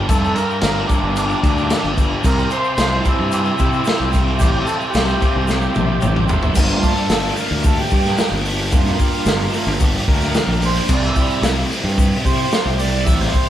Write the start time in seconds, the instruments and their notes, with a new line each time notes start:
Already playing: overdriven electric guitar D4 G4, harmonium A#4 G5
0.09 fingered electric bass F1, overdriven electric guitar G2, transistor combo organ A4, harmonium E5, kick, crash, shaker
0.24 shaker
0.35 overdriven electric guitar G4, transistor combo organ A#4, crash, shaker
0.50 shaker
0.61 fingered electric bass G1, overdriven electric guitar D4, transistor combo organ A#4, snare, crash, shaker
0.87 overdriven electric guitar A#3, transistor combo organ D4, kick, crash, shaker
1.03 fingered electric bass G1
1.16 overdriven electric guitar G4, crash, shaker
1.30 shaker
1.43 fingered electric bass D2, overdriven electric guitar D4, kick, crash, shaker
1.58 shaker
1.70 overdriven electric guitar G4, snare, crash, shaker
1.84 fingered electric bass G1
1.98 overdriven electric guitar D4, kick, crash, shaker
2.24 fingered electric bass C2, overdriven electric guitar C3, transistor combo organ A#4, harmonium C5 E5 G5, kick, crash, shaker
2.38 shaker
2.50 overdriven electric guitar G4, transistor combo organ C5, crash, shaker
2.64 shaker
2.78 fingered electric bass C2, overdriven electric guitar E4, transistor combo organ C5, snare, crash, shaker
3.05 overdriven electric guitar C4, transistor combo organ E4, kick, crash, shaker
3.20 fingered electric bass G2
3.32 overdriven electric guitar G4, crash, shaker
3.45 shaker
3.58 fingered electric bass C3, overdriven electric guitar E4, kick, crash, shaker
3.73 shaker
3.85 overdriven electric guitar G4, snare, crash, shaker
4.00 fingered electric bass C2
4.13 overdriven electric guitar E4, kick, crash, shaker
4.39 fingered electric bass A1, overdriven electric guitar C3, transistor combo organ G4, kick, crash, shaker
4.65 overdriven electric guitar G4, transistor combo organ A4, crash, shaker
4.81 shaker
4.90 transistor combo organ G4, shaker
4.95 fingered electric bass C2, overdriven electric guitar E4, snare, crash
5.07 shaker
5.21 overdriven electric guitar C4, kick, crash, shaker
5.36 fingered electric bass C2
5.47 transistor combo organ G4, overdriven electric guitar G4, snare, shaker
5.61 shaker
5.74 fingered electric bass A#1, overdriven electric guitar E4, high tom, shaker
6.02 fingered electric bass A1, overdriven electric guitar G4, mid tom, shaker
6.16 mid tom
6.28 fingered electric bass G1, overdriven electric guitar E4, floor tom, shaker
6.42 floor tom, shaker
6.55 fingered electric bass G1, overdriven electric guitar G2, harmonium A3 A#3 F4, kick, crash, shaker
6.69 snare
6.83 overdriven electric guitar G4, harmonium A4, kick, open hi-hat, shaker
6.97 shaker
7.09 fingered electric bass G1, overdriven electric guitar D4, snare, open hi-hat, shaker
7.36 overdriven electric guitar A#3, harmonium A#4, open hi-hat, shaker
7.51 fingered electric bass D2
7.63 overdriven electric guitar G4, harmonium A4, kick, open hi-hat, shaker
7.80 harmonium G4
7.90 fingered electric bass G2, overdriven electric guitar D4, kick, open hi-hat, shaker
8.05 snare, shaker
8.18 overdriven electric guitar G4, snare, open hi-hat, shaker
8.32 fingered electric bass G1
8.45 overdriven electric guitar D4, open hi-hat, shaker
8.72 fingered electric bass F1, overdriven electric guitar G2, harmonium A#3 F4, kick, open hi-hat, shaker
8.86 snare, shaker
8.99 overdriven electric guitar G4, kick, open hi-hat, shaker
9.13 shaker
9.26 fingered electric bass G1, overdriven electric guitar D4, snare, open hi-hat, shaker
9.53 harmonium A3 A#3 F4, overdriven electric guitar A#3, open hi-hat, shaker
9.67 fingered electric bass G1
9.80 overdriven electric guitar G4, kick, open hi-hat, shaker
9.94 shaker
10.08 fingered electric bass D2, overdriven electric guitar D4, harmonium A#4, kick, open hi-hat
10.21 snare, shaker
10.34 overdriven electric guitar G4, snare, open hi-hat, shaker
10.47 fingered electric bass A#1
10.62 overdriven electric guitar D4, harmonium C5, open hi-hat, shaker
10.88 fingered electric bass C2, overdriven electric guitar C3, kick, crash, shaker
10.93 harmonium D5
11.03 harmonium E5, snare, shaker
11.16 harmonium G3 C4 E4, overdriven electric guitar G4, kick, open hi-hat, shaker
11.30 shaker
11.42 fingered electric bass C2, overdriven electric guitar E4, snare, open hi-hat, shaker
11.70 overdriven electric guitar C4, open hi-hat, shaker
11.84 fingered electric bass G2
11.97 overdriven electric guitar G4, kick, open hi-hat, shaker
12.12 shaker
12.25 fingered electric bass C3, overdriven electric guitar E4, harmonium C5, kick, open hi-hat, shaker
12.39 shaker
12.52 overdriven electric guitar G4, snare, open hi-hat, shaker
12.65 fingered electric bass C2
12.78 overdriven electric guitar E4, harmonium D5, open hi-hat, shaker
13.05 fingered electric bass A1, overdriven electric guitar C3, harmonium E5, kick, open hi-hat, shaker
13.19 harmonium C5, snare, shaker
13.34 overdriven electric guitar G4, kick, open hi-hat, shaker